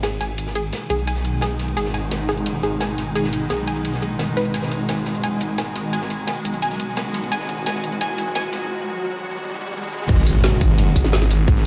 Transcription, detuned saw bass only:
Already playing: G#1
0.21 G#1
0.90 B1
1.77 G#1
2.11 G#1
2.63 G#1
2.98 G#1
3.50 B1
4.37 G#1
4.54 G#1
4.89 G#1
5.41 G#1
5.75 G#1
6.45 B1
7.32 G#1
7.66 G#1
8.18 G#1
8.53 G#1
10.09 G#1
10.44 G#1
10.96 G#1
11.30 G#1

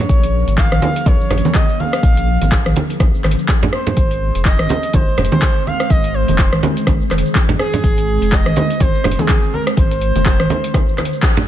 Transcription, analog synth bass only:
0.10 A#1
0.48 G#1
0.72 A#1
1.06 A#1
1.30 G#1
2.03 A#1
2.42 G#1
2.66 A#1
3.00 A#1
3.24 G#1
3.97 G#1
4.35 F1
4.60 G#1
4.94 G#1
5.18 F1
5.90 G#1
6.29 F1
6.53 G#1
6.87 G#1
7.12 F1
7.84 G#1
8.22 F1
8.47 G#1
8.81 G#1
9.05 F1
9.77 G#1
10.16 F1
10.40 G#1

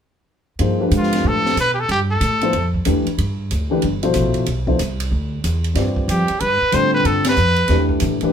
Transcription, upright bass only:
0.59 G2
0.91 G#2
1.25 A2
1.57 B2
1.89 G2
2.21 A2
2.53 F2
2.87 E2
3.07 muted upright bass stroke
3.18 G2
3.51 D2
3.84 G1
4.15 A1
4.36 muted upright bass stroke
4.47 B1
4.79 C2
5.11 D2
5.44 E2
5.75 G2
6.08 F2
6.29 muted upright bass stroke
6.41 G2
6.62 muted upright bass stroke
6.73 A2
7.05 G2
7.37 F2
7.69 E2
8.02 A2
8.22 muted upright bass stroke

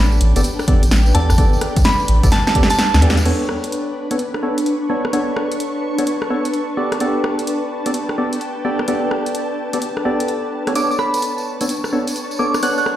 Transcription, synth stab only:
Already playing: B3 G4 A4 D5
0.36 B3 G4 A4 D5
0.68 B3 G4 A4 D5
1.15 B3 G4 A4 D5
1.38 B3 G4 A4 D5
2.24 B3 G4 A4 D5
2.55 B3 G4 A4 D5
3.02 B3 G4 A4 D5
3.26 B3 D4 A4 C#5
4.11 B3 D4 A4 C#5
4.43 B3 D4 A4 C#5
4.90 B3 D4 A4 C#5
5.13 B3 D4 A4 C#5
5.98 B3 D4 A4 C#5
6.30 B3 D4 A4 C#5
6.77 B3 G4 A4 D5
7.01 B3 G4 A4 D5
7.86 B3 G4 A4 D5
8.18 B3 G4 A4 D5
8.65 B3 G4 A4 D5
8.88 B3 G4 A4 D5
9.73 B3 G4 A4 D5
10.05 B3 G4 A4 D5
10.67 B3 G4 A4 C#5
10.76 B3 D4 A4 C#5
11.61 B3 D4 A4 C#5
11.93 B3 D4 A4 C#5
12.39 B3 D4 A4 C#5
12.63 B3 D4 A4 C#5

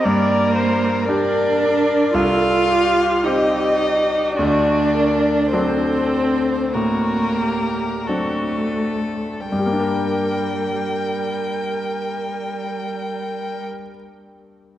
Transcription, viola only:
0.04 D5
0.55 C5
1.07 A#4
2.13 A4
2.71 G4
3.26 G4
4.36 F#4
4.93 A#4
5.52 A4
6.74 F#4
7.37 G4
8.06 F#4
9.50 A#4

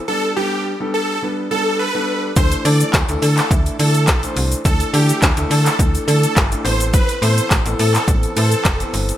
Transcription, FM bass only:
2.37 D2
2.65 D3
2.94 D2
3.09 D2
3.22 D3
3.51 D2
3.79 D3
4.08 B1
4.36 C2
4.65 D2
4.94 D3
5.22 D2
5.37 D2
5.51 D3
5.79 D2
6.08 D3
6.37 G1
6.65 A1
7.22 A2
7.51 A1
7.66 A1
7.79 A2
8.08 A1
8.37 A2
8.65 F1
8.94 G1

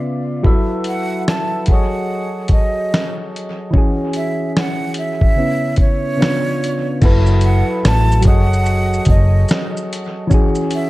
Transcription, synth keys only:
Already playing: C#3 B3 F4 D5
0.43 F#3 E4 F#4 A4 B4 E5
1.67 F#3 F#4 G#4
1.71 A4 C#5 D#5
3.71 E3 C#4
3.75 F#4 G#4
5.36 C#3 B3 C#4 E4
6.17 C#3 B3 D4 F4
7.01 F#3 E4 F#4 A4 B4
8.21 F#3 F#4 G#4
8.25 A4 C#5 D#5
10.27 E3 C#4
10.32 F#4 G#4

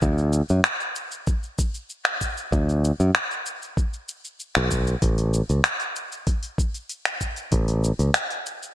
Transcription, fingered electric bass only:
0.03 D2
0.50 F#2
2.52 D2
3.00 F#2
4.57 B1
5.02 A1
5.50 C#2
7.52 A1
7.99 C#2

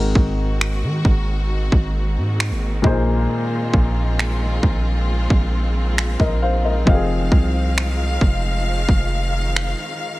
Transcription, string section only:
Already playing: D#3 G#3 A#3 C4 F#4
2.84 F4
6.87 D#3 F3 F5

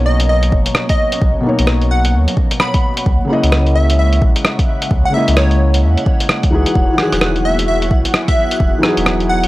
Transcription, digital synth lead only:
0.06 D#5
0.29 D#5
0.90 D#5
1.91 F#5
2.60 B5
3.75 E5
3.99 E5
5.05 F#5
5.14 E5
5.37 C#5
7.45 E5
7.68 E5
8.28 E5
9.29 F#5

